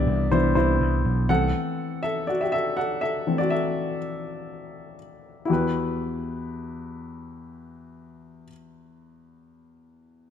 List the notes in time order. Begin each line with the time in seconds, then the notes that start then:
Already playing: E3 B3 D4 F#4 G4 D5 E5
0.07 C2
0.31 C2 E3 B3 D4 E4 C5
0.55 C2 E4 C5
0.81 C2
1.05 B1
1.29 C2 E3 A3 C4 A4 F#5
2.03 A4 E5
2.27 F#4 D5
2.41 G4 E5
2.52 A4 E5
2.77 A4 F#5
3.01 A4 E5
3.27 E3 A3 C4
3.38 F#4 D5
3.50 A4 E5
5.45 E4 F#4
5.49 E2 G4 B4